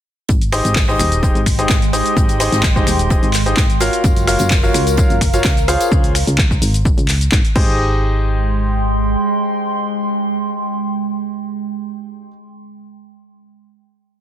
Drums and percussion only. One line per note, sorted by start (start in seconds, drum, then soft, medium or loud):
0.28 kick loud
0.28 closed hi-hat medium
0.28 cabasa soft
0.42 closed hi-hat medium
0.42 cabasa soft
0.52 finger snap medium
0.52 snare medium
0.52 closed hi-hat medium
0.52 open hi-hat loud
0.52 cabasa medium
0.65 closed hi-hat medium
0.65 closed hi-hat soft
0.65 cabasa soft
0.76 kick loud
0.76 snare loud
0.76 clap loud
0.76 open hi-hat medium
0.76 cabasa soft
0.89 cabasa soft
0.99 finger snap medium
0.99 closed hi-hat medium
0.99 open hi-hat loud
0.99 cabasa medium
1.12 closed hi-hat medium
1.12 cabasa soft
1.23 kick loud
1.23 closed hi-hat medium
1.23 cabasa soft
1.35 closed hi-hat soft
1.35 cabasa soft
1.46 finger snap medium
1.46 kick medium
1.46 closed hi-hat medium
1.46 open hi-hat loud
1.46 cabasa medium
1.59 closed hi-hat medium
1.59 cabasa soft
1.69 kick loud
1.69 snare loud
1.69 clap loud
1.69 closed hi-hat medium
1.69 cabasa soft
1.82 closed hi-hat medium
1.82 cabasa soft
1.93 closed hi-hat medium
1.93 open hi-hat loud
1.93 cabasa medium
2.06 closed hi-hat medium
2.06 cabasa soft
2.17 kick loud
2.17 closed hi-hat medium
2.17 cabasa soft
2.29 closed hi-hat soft
2.29 closed hi-hat medium
2.29 cabasa soft
2.40 finger snap medium
2.40 closed hi-hat medium
2.40 open hi-hat loud
2.40 cabasa medium
2.52 snare medium
2.52 closed hi-hat medium
2.52 cabasa soft
2.63 kick loud
2.63 snare loud
2.63 clap loud
2.63 closed hi-hat medium
2.63 cabasa soft
2.76 kick medium
2.76 cabasa soft
2.87 finger snap medium
2.87 closed hi-hat medium
2.87 open hi-hat loud
2.87 cabasa medium
2.99 closed hi-hat medium
2.99 cabasa soft
3.10 kick loud
3.10 closed hi-hat medium
3.10 cabasa soft
3.23 closed hi-hat soft
3.23 cabasa soft
3.33 clap medium
3.33 closed hi-hat medium
3.33 open hi-hat loud
3.33 cabasa medium
3.46 closed hi-hat medium
3.46 cabasa soft
3.57 kick loud
3.57 snare loud
3.57 clap loud
3.57 closed hi-hat medium
3.57 cabasa soft
3.70 closed hi-hat medium
3.70 cabasa soft
3.80 snare medium
3.80 closed hi-hat medium
3.80 open hi-hat loud
3.80 cabasa medium
3.93 closed hi-hat medium
3.93 cabasa soft
4.04 kick loud
4.04 closed hi-hat medium
4.04 tambourine medium
4.04 cabasa soft
4.16 closed hi-hat medium
4.16 tambourine soft
4.16 cabasa soft
4.27 finger snap medium
4.27 snare medium
4.27 closed hi-hat medium
4.27 open hi-hat loud
4.27 cabasa medium
4.39 closed hi-hat medium
4.39 closed hi-hat soft
4.39 tambourine medium
4.39 cabasa soft
4.50 kick loud
4.50 snare loud
4.50 clap loud
4.50 open hi-hat medium
4.50 tambourine medium
4.50 cabasa soft
4.64 tambourine soft
4.64 cabasa soft
4.74 finger snap medium
4.74 closed hi-hat medium
4.74 open hi-hat loud
4.74 cabasa medium
4.87 closed hi-hat medium
4.87 tambourine medium
4.87 cabasa soft
4.97 kick loud
4.97 closed hi-hat medium
4.97 tambourine medium
4.97 cabasa soft
5.10 closed hi-hat soft
5.10 tambourine soft
5.10 cabasa soft
5.21 finger snap medium
5.21 kick medium
5.21 closed hi-hat medium
5.21 open hi-hat loud
5.21 cabasa medium
5.33 closed hi-hat medium
5.33 tambourine medium
5.33 cabasa soft
5.44 kick loud
5.44 snare loud
5.44 clap loud
5.44 closed hi-hat medium
5.44 tambourine medium
5.44 cabasa soft
5.57 closed hi-hat soft
5.57 tambourine soft
5.57 cabasa soft
5.68 closed hi-hat medium
5.68 open hi-hat loud
5.68 cabasa medium
5.81 closed hi-hat medium
5.81 tambourine medium
5.81 cabasa soft
5.92 kick loud
5.92 cabasa soft
6.04 closed hi-hat medium
6.04 cabasa soft
6.15 finger snap medium
6.15 open hi-hat loud
6.15 cabasa medium
6.27 closed hi-hat medium
6.27 cabasa soft
6.38 kick loud
6.38 clap loud
6.38 cabasa soft
6.51 kick medium
6.51 cabasa soft
6.62 open hi-hat loud
6.62 cabasa medium
6.74 closed hi-hat medium
6.74 cabasa soft
6.85 kick loud
6.85 cabasa soft
6.98 closed hi-hat soft
6.98 cabasa soft
7.08 clap medium
7.08 open hi-hat loud
7.08 cabasa medium
7.21 closed hi-hat medium
7.21 cabasa soft
7.32 kick loud
7.32 clap loud
7.32 cabasa soft
7.45 closed hi-hat soft
7.45 cabasa soft
7.56 kick loud
7.56 crash medium